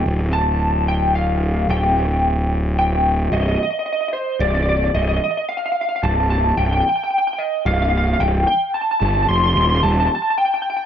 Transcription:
0.06 D1
0.33 A5
0.88 G5
1.15 F5
1.69 D1 G5
2.79 G5
3.32 C1 D#5
3.41 D#5
3.48 D#5
3.56 D#5
3.63 D#5
3.71 D#5
3.79 D#5
3.86 D#5
3.93 D#5
4.01 D#5
4.08 D#5
4.13 C5
4.40 C1 D5
4.48 D5
4.55 D5
4.62 D5
4.69 D5
4.76 D5
4.84 D5
4.94 C1 D#5
5.02 D#5
5.09 D#5
5.16 D#5
5.24 D#5
5.31 D#5
5.37 D#5
5.49 F5
5.57 F5
5.66 F5
5.72 F5
5.81 F5
5.89 F5
5.96 F5
6.03 C1 A5
6.30 A5
6.57 C1 G5
6.65 G5
6.73 G5
6.80 G5
6.89 G5
6.96 G5
7.04 G5
7.10 G5
7.18 G5
7.27 G5
7.33 G5
7.38 D#5
7.66 C1 F5
7.74 F5
7.82 F5
7.90 F5
7.97 F5
8.06 F5
8.13 F5
8.20 C1 G5
8.47 G5
8.74 A5
8.81 A5
8.91 A5
9.00 G1 A5
9.05 A5
9.14 A5
9.23 A5
9.29 F1 C6
9.36 C6
9.44 C6
9.53 D#1 C6
9.61 C6
9.69 C6
9.76 C6
9.83 D#1 A5
9.92 A5
10.00 A5
10.06 A5
10.15 A5
10.22 A5
10.30 A5
10.38 G5
10.45 G5
10.54 G5
10.62 G5
10.70 G5
10.77 G5

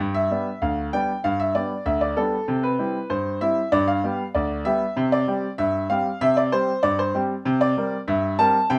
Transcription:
Already playing: G5
0.00 G2
0.14 E5
0.31 G3 B3 D4
0.62 D2 F5
0.93 G3 B3 D4 G5
1.24 G2 F5
1.40 E5
1.55 G3 B3 D4 D5
1.86 D2 E5
2.01 D5
2.17 G3 B3 D4 A4
2.48 C3
2.63 B4
2.79 G3 C4 E4
3.10 G2 C5
3.41 G3 C4 E4 E5
3.72 G2 D5
3.88 F5
4.04 G3 B3 G4
4.35 D2 D5
4.65 G3 B3 G4 E5
4.97 C3
5.12 D5
5.28 G3 C4 G4
5.58 G2 E5
5.90 G3 C4 G4 F5
6.21 C3 E5
6.37 D5
6.52 G3 C4 G4 C5
6.83 G2 D5
6.99 C5
7.14 G3 C4 G4
7.45 C3
7.61 D5
7.77 G3 C4 A#4
8.08 G2 E5
8.39 G3 C4 A#4 A5
8.70 C3 G5

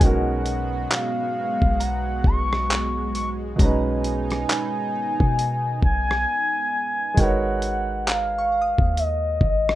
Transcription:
Already playing: B2 B3
0.00 B1 G#3 C#4 D#4 F#4 F#5, kick, closed hi-hat
0.05 F#4 A#4
0.46 closed hi-hat
0.91 F5, clap, closed hi-hat
1.62 B1, kick
1.80 F#5 A#5, closed hi-hat
2.24 B1 C#6, kick
2.53 cross-stick
2.71 clap, closed hi-hat
3.15 C#6, closed hi-hat
3.56 B1 B2 G#3 A#5, kick, closed hi-hat
3.60 C#4 D#4 G#5
3.65 B4
4.04 closed hi-hat
4.30 cross-stick, closed hi-hat
4.49 B5, clap, closed hi-hat
5.20 B2, kick
5.39 closed hi-hat
5.83 B1 G#5, kick
6.11 cross-stick
7.14 G#1 G#3 D#4 F#4, kick, closed hi-hat
7.19 A#4 B4 C#5 F#5
7.62 closed hi-hat
8.07 F5 A#5, clap, closed hi-hat
8.38 C#6
8.62 D#6
8.78 D#2, kick
8.97 D#5, closed hi-hat
9.41 G#1, kick
9.69 cross-stick

